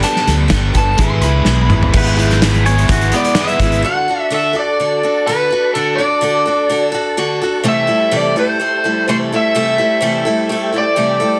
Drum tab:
CC |----------------|x---------------|----------------|----------------|
HH |x-x-x-x-x-x-----|-xxxxxxxxxxxxxxx|----------------|----------------|
SD |-oo-o-------o---|---oo-------o---|----------------|----------------|
T2 |--------------o-|----------------|----------------|----------------|
FT |---------------o|----------------|----------------|----------------|
BD |----o-o-o-------|o-------o-----o-|----------------|----------------|

CC |----------------|----------------|
HH |----------------|----------------|
SD |----------------|----------------|
T2 |----------------|----------------|
FT |----------------|----------------|
BD |----------------|----------------|